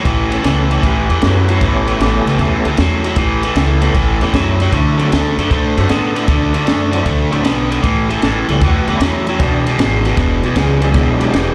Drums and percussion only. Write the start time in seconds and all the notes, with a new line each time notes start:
0.05 kick, ride
0.32 ride
0.44 snare, ride
0.71 ride
0.83 kick, snare, ride
1.10 ride
1.22 snare, ride
1.49 ride
1.61 kick, ride
1.87 ride
2.00 snare, ride
2.27 snare, ride
2.39 kick, snare, ride
2.65 ride
2.77 snare, ride
3.04 ride
3.16 kick, ride
3.43 ride
3.56 snare, ride
3.82 ride
3.95 kick, ride
4.21 snare, ride
4.34 kick, snare, ride
4.60 snare, ride
4.72 kick, ride
4.99 ride
5.12 snare, ride
5.39 ride
5.51 kick, ride
5.77 snare, ride
5.89 snare, ride
6.16 snare, ride
6.28 kick, ride
6.54 ride
6.67 snare, ride
6.93 ride
7.06 kick, ride
7.32 ride
7.45 snare, ride
7.72 ride
7.84 kick, ride
8.10 ride
8.22 snare, ride
8.49 ride
8.61 kick, ride
8.87 ride
9.01 snare, ride
9.27 ride
9.40 kick, ride
9.67 ride
9.79 snare, ride
10.05 snare, ride
10.17 kick, snare, ride
10.43 ride
10.56 kick, snare, ride
10.82 ride
10.94 kick, ride
11.21 ride
11.34 snare, ride